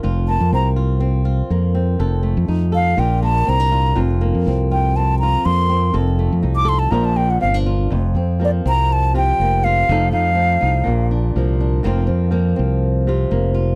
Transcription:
0.03 fingered electric bass F1, nylon-string guitar F2 F4
0.28 nylon-string guitar A#3, flute A5
0.40 fingered electric bass F2
0.52 fingered electric bass C2, nylon-string guitar C4, flute A#5
0.76 nylon-string guitar F4
1.00 nylon-string guitar C4
1.25 nylon-string guitar F4
1.50 fingered electric bass F2, nylon-string guitar A#3
1.75 nylon-string guitar C4
1.99 fingered electric bass F1, nylon-string guitar F2 A4
2.23 nylon-string guitar A3
2.37 fingered electric bass F2
2.48 fingered electric bass F2, nylon-string guitar D#4
2.72 nylon-string guitar A4, flute F5
2.97 fingered electric bass A#1, nylon-string guitar A#2 F4, flute G5
3.23 nylon-string guitar A#3, flute A5
3.47 fingered electric bass C2, nylon-string guitar C4, flute A#5
3.60 nylon-string guitar D4
3.72 nylon-string guitar F4
3.95 fingered electric bass F1, nylon-string guitar F2 F4
4.21 nylon-string guitar A#3
4.34 fingered electric bass F2
4.47 fingered electric bass C2, nylon-string guitar C4
4.71 nylon-string guitar F4, flute G5
4.96 nylon-string guitar C4, flute A5
5.19 nylon-string guitar F4, flute A#5
5.45 fingered electric bass F2, nylon-string guitar A#3, flute C6
5.69 nylon-string guitar C4
5.94 fingered electric bass F1, nylon-string guitar F2 A4
6.19 nylon-string guitar A3
6.32 fingered electric bass F2
6.43 fingered electric bass C2, nylon-string guitar D#4
6.56 flute D6
6.65 nylon-string guitar A4, flute C6
6.79 flute A5
6.91 fingered electric bass A#1, nylon-string guitar A#2 F3 A#3 D4 F4, flute A#5
7.05 flute A5
7.16 nylon-string guitar A#3, flute G5
7.30 flute F#5
7.41 fingered electric bass G1, nylon-string guitar C4, flute F5
7.54 nylon-string guitar D4
7.66 nylon-string guitar F4
7.90 fingered electric bass F1, nylon-string guitar F2
8.15 fingered electric bass F2, nylon-string guitar C4
8.40 nylon-string guitar F3 A#3
8.45 flute D5
8.66 fingered electric bass C2, nylon-string guitar C4, flute A#5
8.93 flute A5
9.14 nylon-string guitar C3 F4, flute G5
9.40 fingered electric bass F1, nylon-string guitar A#3
9.64 nylon-string guitar F4, flute F5
9.89 fingered electric bass F1, nylon-string guitar F2 F3 A3 D#4 A4
10.11 fingered electric bass F2, nylon-string guitar D#4, flute F5
10.34 nylon-string guitar F3 A3
10.61 fingered electric bass C2, nylon-string guitar D#4
10.84 fingered electric bass A#1, nylon-string guitar A#2
11.11 nylon-string guitar D4
11.36 fingered electric bass C2, nylon-string guitar F3 A#3
11.60 nylon-string guitar D4
11.83 fingered electric bass F1, nylon-string guitar F2 F3 A#3 C4 F4
12.07 fingered electric bass F2, nylon-string guitar C4
12.31 nylon-string guitar F3 A#3
12.56 fingered electric bass C2, nylon-string guitar C4
13.07 nylon-string guitar C3 F4
13.31 fingered electric bass F1, nylon-string guitar A#3
13.54 nylon-string guitar F4

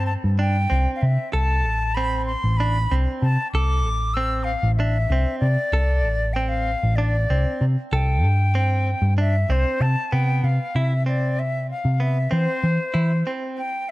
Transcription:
Already playing: picked electric bass G2, clean electric guitar C4
0.06 flute A5
0.24 picked electric bass G2
0.38 clean electric guitar D4, flute G5
0.70 picked electric bass C2, clean electric guitar C4
0.96 flute F5
1.01 picked electric bass C3, flute E5
1.33 picked electric bass C2, clean electric guitar A4, flute A5
1.65 picked electric bass A1
1.95 clean electric guitar C4, flute B5
2.26 flute C6
2.44 picked electric bass A1
2.57 clean electric guitar D4, flute B5
2.91 picked electric bass C2, clean electric guitar C4
3.21 picked electric bass C3, flute A5
3.52 picked electric bass C2, clean electric guitar A4, flute D6
3.85 picked electric bass A1
4.14 clean electric guitar C4, flute E6
4.44 flute F5
4.63 picked electric bass A1
4.76 clean electric guitar D4, flute E5
5.10 picked electric bass C2, clean electric guitar C4
5.39 picked electric bass C3, flute D5
5.73 picked electric bass C2, clean electric guitar A4
6.04 picked electric bass A1
6.33 clean electric guitar C4, flute G5
6.49 flute F5
6.83 picked electric bass A1
6.96 clean electric guitar D4, flute D5
7.30 picked electric bass C2, clean electric guitar C4
7.61 picked electric bass C3
7.91 picked electric bass C2, clean electric guitar A4, flute G5
8.24 picked electric bass G2
8.55 clean electric guitar C4
9.02 picked electric bass G2
9.18 clean electric guitar D4, flute E5
9.49 picked electric bass C2, clean electric guitar C4, flute C5
9.80 picked electric bass C3, flute A5
10.12 picked electric bass C3, clean electric guitar B3, flute G5
10.44 picked electric bass C3, flute F5
10.75 picked electric bass C3, clean electric guitar E4, flute E5
11.06 clean electric guitar C4, flute D5
11.39 flute E5
11.71 flute F5
11.85 picked electric bass C3
11.94 flute F5
12.00 clean electric guitar B3, flute E5
12.31 picked electric bass E3, clean electric guitar C4, flute C5
12.64 picked electric bass E3
12.94 picked electric bass E3, clean electric guitar E4
13.27 clean electric guitar C4
13.58 flute G5

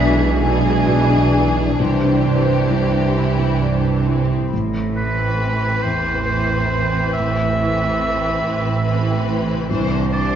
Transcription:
Already playing: felt piano B1 B2 G#3 D4, double bass section B1, cello section B2, harp B2 B3 D4 D5, viola section E3, french horn section G#3 D4, violin section D4 G#4, flute section E5
0.00 harp G#3
0.20 felt piano E4
0.42 viola section E3, felt piano D4, violin section D4 G#4, harp E4, flute section G#5
0.65 felt piano G#3
0.87 felt piano B2, harp D5
1.10 felt piano D4
1.33 felt piano G#3, harp E4
1.56 felt piano E4
1.79 double bass section C2, felt piano C2, harp C3, cello section C3, french horn section E3, viola section E3, violin section D4 G4, flute section C5
2.03 felt piano D4
2.26 felt piano G2, harp C4
2.48 felt piano D4
2.71 felt piano G3, harp G3
2.94 felt piano E4
3.17 felt piano D4, violin section E4, harp E4
3.39 felt piano G3
3.61 felt piano G2, violin section D4, harp D5
3.85 felt piano D4
4.07 felt piano G3, violin section C4, harp E4
4.30 harp A2, felt piano E4
4.38 harp C4
4.43 harp E4
4.47 harp B5
4.52 double bass section A1, felt piano A1, cello section A2
4.96 viola section E3, violin section C4 B4, oboe B4
5.82 double bass section A1, felt piano E2, cello section A2, oboe C5
6.27 viola section E3, violin section C4 B4
7.13 double bass section A1, cello section A2, oboe E5
7.56 viola section E3, violin section C4 B4
8.42 double bass section A1, cello section A2
8.85 viola section E3, violin section C4 B4
9.53 harp C3
9.57 harp C4
9.61 harp E4
9.66 cello section C2, viola section E3, harp D5
9.70 double bass section C2, felt piano C2, violin section D4 C5
10.11 viola section E3, violin section D4 C5, oboe D5

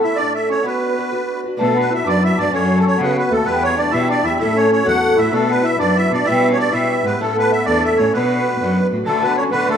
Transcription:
Already playing: harp A5 B5 C#6
0.03 twelve-string acoustic guitar A3 C#4 E4 A4, bass clarinet E4, accordion E5, harp E6
0.16 twelve-string acoustic guitar C#4 E4 A4, bass clarinet D4, accordion D5, harp D6
0.20 twelve-string acoustic guitar A2 A3
0.35 accordion E5, harp E6
0.48 bass clarinet C#4, twelve-string acoustic guitar A4, accordion C#5, harp C#6
0.53 twelve-string acoustic guitar C#4 E4
0.62 bass clarinet B3, twelve-string acoustic guitar B3 D4 F#4, harp B5
0.66 twelve-string acoustic guitar B4, accordion B4
0.96 twelve-string acoustic guitar B3 D4 F#4 B4
1.11 twelve-string acoustic guitar B3 D4 F#4 B4
1.43 twelve-string acoustic guitar D4 F#4 B4
1.57 cello B2, bass clarinet A3, twelve-string acoustic guitar B3 D4 F#4 B4, harp A5
1.62 accordion A4
1.75 bass clarinet B3, harp B5
1.80 accordion B4
1.90 twelve-string acoustic guitar B3 D4 F#4 B4, bass clarinet E4, harp E6
1.95 accordion E5
2.04 cello F#2, twelve-string acoustic guitar B3 D4 F#4 B4, bass clarinet D4, harp D6
2.08 accordion D5
2.22 bass clarinet E4, accordion E5, harp E6
2.37 cello G2, bass clarinet D4, twelve-string acoustic guitar D4 F#4 B4, accordion D5, harp D6
2.52 cello F#2, twelve-string acoustic guitar F#3 A3 C#4 F#4, bass clarinet C#4, accordion C#5, harp C#6
2.76 accordion A4, harp A5
2.83 twelve-string acoustic guitar F#3 A3 C#4, harp C#6
2.87 twelve-string acoustic guitar F#4, accordion C#5
2.97 cello C#3, twelve-string acoustic guitar A3 F#4, bass clarinet B3, harp B5
3.02 twelve-string acoustic guitar F#3 C#4, accordion B4
3.16 bass clarinet B3, accordion B4, harp B5
3.31 cello D#2, bass clarinet A3, twelve-string acoustic guitar A3 C#4 F#4, accordion A4, harp A5
3.44 cello E2, twelve-string acoustic guitar E3 G3 B3 G4, bass clarinet B3, accordion B4, harp B5
3.63 accordion C#5, harp C#6
3.76 twelve-string acoustic guitar E3 G3 B3, bass clarinet D4, accordion D5, harp D6
3.81 twelve-string acoustic guitar G4
3.91 cello B2, twelve-string acoustic guitar E3 G3 B3 G4, bass clarinet E4, accordion E5, harp E6
4.09 bass clarinet D4, accordion D5, harp D6
4.24 cello E2, twelve-string acoustic guitar G3 B3 G4, bass clarinet E4, accordion E5, harp E6
4.39 cello A2, twelve-string acoustic guitar A2 A3 C#4 E4 A4, bass clarinet E4, accordion E5, harp E6
4.55 bass clarinet C#4, accordion C#5, harp C#6
4.69 twelve-string acoustic guitar A3 C#4 E4, bass clarinet C#4, accordion C#5, harp C#6
4.73 twelve-string acoustic guitar A4
4.84 cello E2, twelve-string acoustic guitar A2 A3 C#4 E4 A4, bass clarinet F#4, accordion F#5, harp F#6
5.03 harp F#6
5.16 cello A2, twelve-string acoustic guitar C#4 E4 A4, bass clarinet E4, accordion E5, harp E6
5.31 cello B2, bass clarinet A3, twelve-string acoustic guitar B3 D4 F#4 B4, accordion A4, harp A5
5.49 bass clarinet B3, accordion B4, harp B5
5.62 twelve-string acoustic guitar B3 D4 F#4 B4, bass clarinet E4, accordion E5, harp E6
5.77 cello F#2, twelve-string acoustic guitar B3 D4 F#4 B4, bass clarinet D4, accordion D5, harp D6
5.97 bass clarinet E4, accordion E5, harp E6
6.10 cello B2, twelve-string acoustic guitar D4 F#4 B4, accordion D5, harp D6
6.14 bass clarinet D4
6.24 twelve-string acoustic guitar B2 G3 B3 E4 G4 B4, cello B2, bass clarinet E4, accordion E5, harp E6
6.50 bass clarinet C#4, accordion C#5, harp C#6
6.57 twelve-string acoustic guitar B3 E4 G4 B4, bass clarinet D4, accordion D5, harp D6
6.71 cello B2, twelve-string acoustic guitar B2 G3 B3 E4 G4 B4, bass clarinet E4, accordion E5, harp E6
7.04 cello G#2, bass clarinet B3, twelve-string acoustic guitar B3 E4 G4 B4, accordion B4
7.19 cello A2, twelve-string acoustic guitar A2 A3 C#4 E4 A4, bass clarinet A3, accordion A4, harp A5
7.37 bass clarinet B3, accordion B4, harp B5
7.52 twelve-string acoustic guitar A3 C#4 E4 A4, accordion E5, harp E6
7.66 cello E2, twelve-string acoustic guitar A2 A3 C#4 E4 A4, bass clarinet D4, accordion D5, harp D6
7.83 accordion E5, harp E6
7.97 cello A2, bass clarinet C#4, twelve-string acoustic guitar E4 A4, accordion C#5, harp C#6
8.13 cello B2, bass clarinet B3, twelve-string acoustic guitar B3 D4 F#4 B4, accordion B4, harp B5
8.47 twelve-string acoustic guitar B3 D4 F#4 B4
8.60 cello F#2, twelve-string acoustic guitar B3 D4 F#4 B4
8.91 cello A2, twelve-string acoustic guitar F#4 B4
8.96 twelve-string acoustic guitar D4
9.06 twelve-string acoustic guitar D2 A2 D3 A3 D4 F#4, cello D3, bass clarinet A3, accordion A4, harp A5
9.22 twelve-string acoustic guitar D3 A3 D4 F#4, bass clarinet B3, accordion B4, harp B5
9.37 twelve-string acoustic guitar D3 A3 D4 F#4, bass clarinet C#4, accordion C#5, harp C#6
9.51 twelve-string acoustic guitar D2 A2 D3 A3 D4 F#4, cello D3, bass clarinet B3, accordion B4, harp B5
9.68 twelve-string acoustic guitar D3 A3 D4 F#4, bass clarinet A3, accordion A4, harp A5

